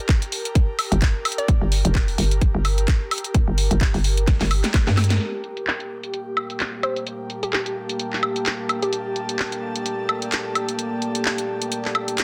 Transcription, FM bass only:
0.92 G1
1.48 G1
1.61 G1
1.85 F1
2.18 G1
2.55 G1
3.34 G1
3.48 G1
3.71 G1
3.94 G1
4.41 G1
4.87 G2

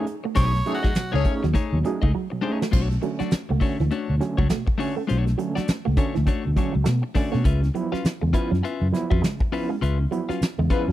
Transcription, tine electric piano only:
0.07 D#4 G#4
0.37 B2 F#3
0.66 A3 C#4 D#4 G#4
0.84 D#4 G#4
0.97 B2 F#3
1.26 A3 C#4 D#4 G#4
1.44 D#4
1.56 D#4 G#4
1.73 B2 F#3
1.85 A3 C#4 D#4 G#4
2.14 D#4 G#4
2.32 B2 F#3
2.43 A3 C#4 D#4 G#4
2.73 B2
2.92 A3 C#4
3.02 D3 A3 C#4
3.32 A3 C#4
3.49 B2
3.61 D3 A3 C#4
3.91 A3 C#4
4.09 B2
4.20 D3 A3 C#4
4.51 B2
4.79 D3 A3 C#4
4.98 A3 C#4
5.10 B2
5.27 A3 C#4
5.38 D3 A3 C#4
5.68 A3 C#4
5.86 B2
5.96 D3 A3 C#4
6.27 A3 C#4
6.45 B2
6.57 D3 A3 C#4
6.86 B2
7.15 D3 A3 C#4
7.34 A3 C#4
7.45 C#3
7.63 B3 E4
7.75 F3 B3 E4
8.04 B3 E4
8.22 C#3
8.34 F3 B3 E4
8.64 B3 E4
8.81 C#3
8.93 F3 B3 E4
9.23 C#3
9.52 F3 B3 E4
9.71 B3 E4
9.82 C#3
10.00 B3 E4
10.11 F3 B3 E4
10.41 B3 E4
10.59 C#3
10.70 F3 B3 E4

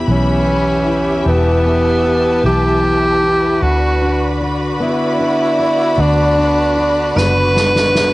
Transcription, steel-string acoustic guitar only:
Already playing: E2 B3 E4
0.07 E3
0.47 B3
0.86 E4
1.25 E2
1.66 B3
2.05 E4
2.44 E3
2.84 B3
3.24 E4
3.63 D3
4.02 D4
4.41 F#4
4.80 B3
5.19 D4
5.59 F#4
5.98 D3
6.38 D4
6.76 F#4
7.15 B3
7.55 D4
7.94 F#4

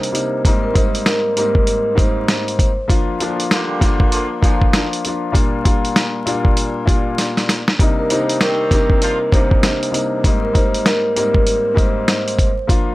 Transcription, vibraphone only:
Already playing: C5
0.63 A#4
0.75 C5
1.06 A#4
1.37 A#4
1.98 C5
7.99 A#4
8.10 C5
8.40 A#4
8.72 A#4
9.32 C5
10.43 A#4
10.54 C5
10.85 A#4
11.16 A#4
11.78 C5

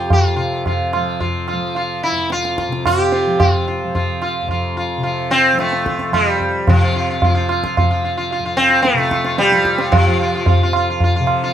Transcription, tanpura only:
Already playing: F2 C3 F3
0.36 C3
0.95 F3
1.53 F3
2.12 F2
2.68 C3
3.27 F3
3.84 F3
4.42 F2
4.97 C3
5.53 F3
6.12 F3
6.68 C3
7.24 F3
7.80 F3
8.39 F2
8.93 C3
9.51 F3
10.08 F3
10.65 F2
11.20 C3

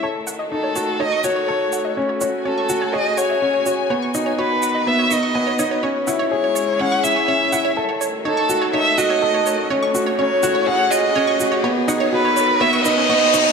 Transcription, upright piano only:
0.03 A4
0.52 D#4
0.76 F#4
1.00 D#4
1.24 F#4
1.48 A4
1.97 C#4
2.21 F#4
2.45 C#4
2.70 F#4
2.94 G#4
3.42 C#4
3.66 F#4
3.90 B3
4.15 D#4
4.39 F#4
4.87 B3
5.11 D#4
5.35 B3
5.59 D#4
5.83 C#4
6.08 E4
6.32 G#4
6.80 C#4
7.04 E4
7.28 C#4
7.53 E4
7.77 A4
8.25 D#4
8.49 F#4
8.74 D#4
8.98 F#4
9.22 A4
9.70 C#4
9.95 F#4
10.19 C#4
10.43 F#4
10.67 G#4
11.16 C#4
11.40 F#4
11.64 B3
11.88 D#4
12.13 F#4
12.61 B3
12.86 D#4
13.09 B3
13.34 D#4

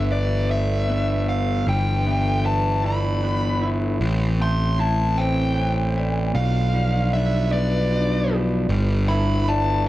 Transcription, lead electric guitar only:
Already playing: E5
0.12 D5
0.51 E5
1.29 F5
1.69 G5
2.46 A5
2.87 B5
4.42 C6
4.80 A5
5.18 G5
6.35 F5
7.13 E5
7.52 D5
9.09 B5
9.48 A5

